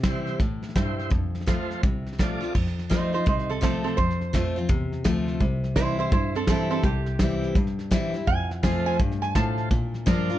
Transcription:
Already playing: C3
0.03 E3 G3 C4 E4 G4 C5, kick, snare, hi-hat pedal
0.27 snare
0.40 A2, kick, snare
0.63 snare
0.69 snare
0.75 G2 E4 G4 C5, kick, snare, hi-hat pedal
0.99 snare
1.10 F2, kick, snare
1.35 snare
1.41 snare
1.46 F3 A3 C4 F4 A4 C5, kick, snare, hi-hat pedal
1.70 snare
1.83 C2 C3, kick, snare
2.06 snare
2.13 snare
2.18 F3 A3 C4 F4 A4 D5, kick, snare, hi-hat pedal
2.41 C4 F4, snare
2.55 F2, kick, snare, crash
2.67 snare
2.79 snare
2.89 F3 A3 C4 D#4 F4 C5, kick, snare, hi-hat pedal
3.13 C4 D#4 F4 C5, snare
3.26 C2 C3 D#4 C5, kick, snare
3.39 snare
3.50 C4 A4, snare
3.61 F3 A3 C4 F4 A4, kick, snare, hi-hat pedal
3.84 C4 A4, snare
3.97 F2 C5, kick, snare
4.10 snare
4.21 snare
4.33 F2 F3 A3 C4 F4, kick, snare, hi-hat pedal
4.56 C4 F4, snare
4.69 E2 C3, kick, snare
4.92 snare
5.04 D2 F3 A3 C4 F4, kick, snare, hi-hat pedal
5.28 snare
5.40 C2 C3, kick, snare
5.64 snare
5.76 E3 G3 C4 E4 C5, kick, snare, hi-hat pedal
5.99 E4 C5, snare
6.11 G2 E4 C5, kick, snare
6.35 C4 A4, snare
6.47 E3 G3 C4 E4 A4, kick, snare, hi-hat pedal
6.70 C4 A4, snare
6.83 C2 C3 G4, kick, snare
7.06 snare
7.19 E3 G3 C4 E4, kick, snare, hi-hat pedal
7.43 snare
7.55 G2, kick, snare
7.67 snare
7.79 snare
7.91 E3 G3 C4 E4, kick, snare, hi-hat pedal
8.14 C4 E4, snare
8.27 F2 G#5, kick, snare
8.51 snare
8.63 F2 F3 A3 C4 F4 A4 C5 G#5, kick, snare, hi-hat pedal
8.86 G#5, snare
8.99 G2, kick, snare
9.11 snare
9.22 G#5, snare
9.35 A2 F4 A4 C5 A5, kick, snare, hi-hat pedal
9.58 snare
9.70 A#2, kick, snare
9.94 snare
10.06 G2 F3 A#3 D4 F4 A#4 D5, kick, snare, hi-hat pedal
10.30 D4 F4, snare

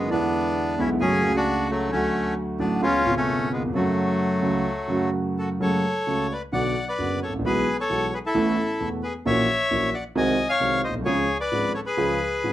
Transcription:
0.08 E2 D3 E3 G#3 B3 D4
0.12 E4
0.78 B1 B2 D3 G#3 B3 C#4 E4
1.00 F#2 C#3 F#3 G#3 A3 C#4 F#4 G#4
1.23 C#2 G#3 A3 F#4
1.36 D4 F#4
1.70 F#3 A3
1.91 D2 D3 F#3 A3 C#4 F#4
2.59 A1 A2 D3 F#3 A3 B3 D4 F#4
2.81 C#2 C#3 G#3 B3 C#4 F4
3.03 G#1 B2 C#3 B3 G#4
3.07 F4
3.17 A3 C#4
3.53 G#3 B3
3.57 D#2
3.63 E2
3.69 F2 C#3
3.74 F#2 F#3 A3 F#4
4.42 C#2 C#3 F#3 A3 F#4
4.87 F#2 C#3 F#3 A3
4.92 F#4
5.39 F#4 A4
5.60 F#2 C#3 F#3 G#3 A3 F#4 A4 C#5
6.07 C#2 C#3 G#3 A3 F#4
6.32 B4 D5
6.52 B1 B2 D3 F#3 B3 F#4 D5 F#5
6.88 B4 D5
6.98 F#1 F#2 D3 F#3 B3 F#4
7.23 A4 C#5
7.28 G#1
7.33 A1
7.39 A#1
7.45 B1 B2 E3 G#3 B3 F#4 G#4 B4
7.81 A4 C#5
7.90 B1 B2 E3 G#3 B3 F#4
8.14 G#4 B4
8.26 E4 A4
8.34 A1 A2 E3 A3 B3 A4
8.80 E1 E2 E3 A3 B3 A4
9.03 G#4 B4
9.26 A#1 A#2 E3 A#3 C#4 F#4 C#5 E5
9.71 A#1 A#2 E3 A#3 C#4 F#4
9.94 D5 F#5
10.15 C2 C3 D#3 G#3 C4 F#4 D#5 G#5
10.49 C#5 F5
10.60 C2 C3 D#3 G#3 C4 F#4
10.84 C5 D#5
10.89 A#1
10.94 B1
11.00 C2
11.05 C#2 C#3 F3 G#3 C#4 G#4 C#5
11.41 B4 D5
11.52 G#1 G#2 F3 G#3 C#4 G#4
11.74 A4 C#5
11.86 G#4 B4
11.97 C#2 C#3 F3 G#3 C#4 G#4
12.43 G#1 G#2 F3 G#3 C#4 G#4

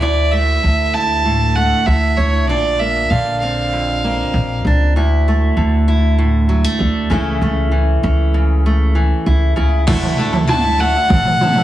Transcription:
0.00 D2 E4 D5
0.31 A3 E5
0.63 D2 D3
0.94 E4 A5
1.25 A2
1.55 A3 F#5
1.86 D2 D3 E5
2.17 D2 E4 C#5
2.48 A#1 A#2 D4 D5
2.79 A#3 E5
3.10 A#1 D3 F5
3.40 C4 F5
3.73 F2
4.04 A#3
4.34 A#1
4.65 C#2 D4
4.95 D2 E4
5.28 A3
5.57 D2 D3
5.88 E4
6.18 A2
6.49 F#3
6.64 A3
6.79 D2 D3
7.10 C#2 C#3 E3 A3 C#4 E4
7.41 C#2 A3
7.72 E3
8.03 C#2 C#4
8.34 C#3
8.66 A3
8.95 E3
9.26 C#2 E4
9.56 C#2 C#3 E4
9.87 D2 D3 A3 D4 E4 A4, kick, floor tom, crash
10.03 floor tom
10.17 A3 D4 E4 A4
10.32 D4 E4 A4, floor tom
10.47 D3 A3 D4 E4 A4 A5, mid tom
10.63 D4 E4 A4
10.78 A3 D4 E4 A4 F#5
10.94 D4 E4 A4
11.09 A2 D3, kick, floor tom
11.25 floor tom
11.41 A3 D4 E4 A4, floor tom, mid tom
11.56 E4 A4, floor tom
11.60 D4

